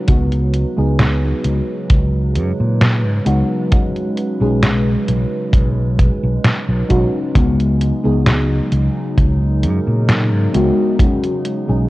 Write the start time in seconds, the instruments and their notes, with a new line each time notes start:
Already playing: ambient pad C#3 F#3 D#4 B4, fm electric piano G#3 C#4 D#4 F#4
0.07 fingered electric bass C#2, fm electric piano G#3 B3 D#4 F#4, ambient pad G#3, kick, closed hi-hat
0.32 closed hi-hat
0.54 closed hi-hat
0.77 fingered electric bass C#2, fm electric piano G#3 B3 D#4 G#4
0.99 snare, closed hi-hat
1.45 fingered electric bass C#2, closed hi-hat
1.90 fingered electric bass C#2, kick, closed hi-hat
2.35 fingered electric bass F#2, closed hi-hat
2.60 fingered electric bass A#2
2.81 snare, closed hi-hat
3.05 fingered electric bass G#2
3.25 fingered electric bass C#2, fm electric piano G#3 B3 D#4 F#4, closed hi-hat
3.71 fm electric piano G#3 C#4 D#4 F#4, kick, closed hi-hat
3.96 closed hi-hat
4.17 closed hi-hat
4.40 fingered electric bass B1, fm electric piano G#3 C#4 D#4 G#4
4.63 snare, closed hi-hat
5.08 fingered electric bass B1, closed hi-hat
5.53 fingered electric bass B1, kick, closed hi-hat
5.99 kick, closed hi-hat
6.23 fingered electric bass B1
6.45 snare, closed hi-hat
6.69 fingered electric bass B1
6.89 fingered electric bass B1, fm electric piano G#3 C#4 D#4 F#4, kick, closed hi-hat
7.35 fingered electric bass C#2, ambient pad C#3 F#3 B3 D#4, fm electric piano G#3 B3 D#4 F#4, kick, closed hi-hat
7.60 closed hi-hat
7.81 closed hi-hat
8.04 fingered electric bass C#2, fm electric piano G#3 B3 D#4 G#4
8.27 snare, closed hi-hat
8.72 fingered electric bass C#2, closed hi-hat
9.17 fingered electric bass C#2, ambient pad A#4, kick, closed hi-hat
9.63 fingered electric bass F#2, closed hi-hat
9.87 fingered electric bass A#2
10.09 snare, closed hi-hat
10.33 fingered electric bass G#2
10.53 fingered electric bass C#2, fm electric piano G#3 B3 D#4 F#4, closed hi-hat
10.98 fm electric piano G#3 C#4 D#4 F#4, ambient pad B3, kick, closed hi-hat
11.24 closed hi-hat
11.45 closed hi-hat
11.68 fingered electric bass B1, fm electric piano G#3 C#4 D#4 G#4